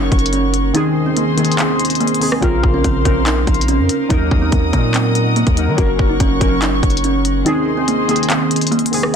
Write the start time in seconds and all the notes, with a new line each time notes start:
Already playing: F#1 F#3 C#4 D#4 A#4 C#5 F#5 C#6
0.12 F#1, kick, closed hi-hat
0.19 closed hi-hat
0.26 closed hi-hat
0.33 C#4, closed hi-hat
0.54 closed hi-hat
0.73 D#3 C4 D#4 G#4 C5 D#5 C6, closed hi-hat
1.06 C4
1.17 A#3, closed hi-hat
1.36 D#3 A#3 C4 G#4, closed hi-hat
1.45 closed hi-hat
1.52 closed hi-hat
1.58 C4, clap, closed hi-hat
1.79 closed hi-hat
1.85 closed hi-hat
1.90 closed hi-hat
1.95 closed hi-hat
2.00 A#3, closed hi-hat
2.07 closed hi-hat
2.15 closed hi-hat
2.20 D#3 C4 G#4, open hi-hat
2.32 cross-stick
2.41 A#1 C#3 C4 F4 A#4 C5 F5 C6, kick, closed hi-hat
2.63 A#1, kick
2.74 C#4
2.84 A#1 C4, kick, closed hi-hat
3.04 A#1 C#3 C4 A#4, kick, closed hi-hat
3.26 D#4, clap, closed hi-hat
3.47 A#1, kick, closed hi-hat
3.54 closed hi-hat
3.61 closed hi-hat
3.68 C#4, closed hi-hat
3.79 F2
3.89 closed hi-hat
4.09 D#2 F#3 D#4 A#4 D#5 F#5 D#6, kick, closed hi-hat
4.31 D#2, kick
4.41 C4
4.52 D#2 A#3, kick, closed hi-hat
4.72 A#2 F#3 A#3 D#4 A#4, kick, closed hi-hat
4.94 C4, clap, closed hi-hat
5.15 closed hi-hat
5.36 A#3, closed hi-hat
5.47 D#2, kick, closed hi-hat
5.56 F#3 D#4 A#4, closed hi-hat
5.68 D#3
5.77 F#1 F#3 C#4 F#4 A#4 C#5 C#6, kick, closed hi-hat
5.99 F#1, kick
6.09 D#4
6.20 F#1 C#4, kick, closed hi-hat
6.40 F#1 F#3 C#4 A#4, kick, closed hi-hat
6.62 D#4, clap, closed hi-hat
6.83 F#1, kick, closed hi-hat
6.90 closed hi-hat
6.97 closed hi-hat
7.04 C#4, closed hi-hat
7.25 closed hi-hat
7.45 D#3 C4 D#4 G#4 C5 D#5 C6, closed hi-hat
7.77 C4
7.88 A#3, closed hi-hat
8.08 D#3 A#3 C4 G#4, closed hi-hat
8.16 closed hi-hat
8.23 closed hi-hat
8.30 C4, clap, closed hi-hat
8.51 closed hi-hat
8.56 closed hi-hat
8.61 closed hi-hat
8.67 closed hi-hat
8.72 A#3, closed hi-hat
8.79 closed hi-hat
8.86 closed hi-hat
8.91 D#3 C4 G#4, open hi-hat
9.03 cross-stick